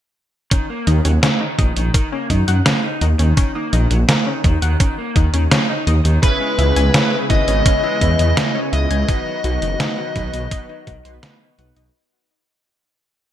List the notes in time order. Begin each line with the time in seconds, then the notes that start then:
0.51 D#3 C#4, kick, closed hi-hat
0.70 A#3
0.87 D#2 D#3 D#4, closed hi-hat
1.05 D#2 F#3 C#4, closed hi-hat
1.23 D#3 C#4, snare, closed hi-hat
1.41 D#3 D#4
1.59 A#1 D#3 D#5, kick, closed hi-hat
1.76 A#1 D#3, closed hi-hat
1.94 D#3 A#4, kick, closed hi-hat
2.12 A#3 C#4
2.30 F#2 D#3 D#4, kick, closed hi-hat
2.48 F#2 D#3 F#5, closed hi-hat
2.66 F#3 C#4, snare, closed hi-hat
2.84 D#4
3.01 D#2 D#3 D#4, closed hi-hat
3.19 D#2 D#3 C#4, closed hi-hat
3.37 D#3 C#4, kick, closed hi-hat
3.55 A#3 D#4
3.73 A#1 D#3 D#5, closed hi-hat
3.91 A#1 F#3, closed hi-hat
4.09 D#3 A#4, snare, closed hi-hat
4.27 D#3 C#4
4.44 D#2 D#3 D#4, kick, closed hi-hat
4.62 D#2 D#3 F#5, closed hi-hat
4.80 D#3 C#4, kick, closed hi-hat
4.98 A#3
5.16 D#2 D#3 D#4, kick, closed hi-hat
5.34 D#2 D#3 C#4, closed hi-hat
5.51 F#3 C#4, snare, closed hi-hat
5.69 D#4
5.87 D#2 D#3 D#5, closed hi-hat
6.05 D#2 D#3, closed hi-hat
6.23 C#3 G#3 B3 C#4 E4 G#4 B4, kick, closed hi-hat
6.40 G#3 C#4
6.58 C#2 C#3 C#4 E4 G#4 B4, closed hi-hat
6.76 C#2 E3 G#5, closed hi-hat
6.94 C#3 C#4 E4 G#4 B4, snare, closed hi-hat
7.12 C#3
7.30 G#1 C#3 C#4 E4 G#4 B4 D#5, kick, closed hi-hat
7.48 G#1 C#3 C#4, closed hi-hat
7.66 C#3 C#4 E4 G#4 B4, kick, closed hi-hat
7.83 G#3 E4
8.01 E2 C#3 C#4 E4 G#4 B4 E5, kick, closed hi-hat
8.19 E2 C#3, closed hi-hat
8.37 E3 C#4 E4 G#4 B4 C#5, snare, closed hi-hat
8.55 C#4
8.73 C#2 C#3 C#4 E4 G#4 B4 D#5, closed hi-hat
8.90 C#2 C#3 G#5, closed hi-hat
9.08 B2 D#3 F#3 B3 D#4 F#4 B4, kick, closed hi-hat
9.26 F#3
9.44 B1 B2 B3 D#4 F#4 B4, closed hi-hat
9.62 F#1 D#3 D#4, closed hi-hat
9.80 B2 B3 D#4 F#4 B4, snare, closed hi-hat
9.98 B2 F#4
10.16 B1 B2 B3 D#4 F#4 B4 B5, kick, closed hi-hat
10.33 B1 B2, closed hi-hat
10.51 B2 B3 D#4 F#4 B4 D#5, kick, closed hi-hat
10.69 F#3 D#4
10.87 B1 D#3 F#4, kick, closed hi-hat
11.05 B1 B2 B3 D#4 F#4 B4 C6, closed hi-hat
11.23 B3 D#4 F#4 B4, snare, closed hi-hat
11.41 B2
11.59 B1 B3 D#4 F#4 B4, closed hi-hat
11.76 B1 B2 D#4, closed hi-hat